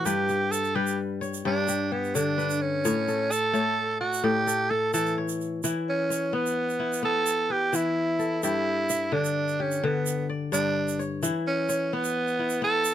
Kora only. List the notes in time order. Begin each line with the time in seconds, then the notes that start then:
Already playing: A2 E3 A4 C#5
0.05 G2 B4
0.29 G4
0.75 G3 B4
1.21 C#5
1.45 G2 G4
1.68 G4
1.92 G4
2.15 D3
2.38 B4
2.85 A2 C#5
3.08 A4
3.53 A3 C#5
4.01 D5
4.24 A2 A4
4.47 A4
4.71 A4
4.94 E3
5.18 C#5
5.64 E3 E4
6.10 C#5
6.33 B3
6.79 E4
7.03 B3
7.50 B4
7.73 E3
8.19 A4
8.43 G2 G4
8.90 E5
9.12 D3
9.60 G4
9.84 D3
10.29 D5
10.52 G2
10.99 C#5
11.23 E3 E4
11.69 C#5
11.93 B3
12.39 E4
12.62 B3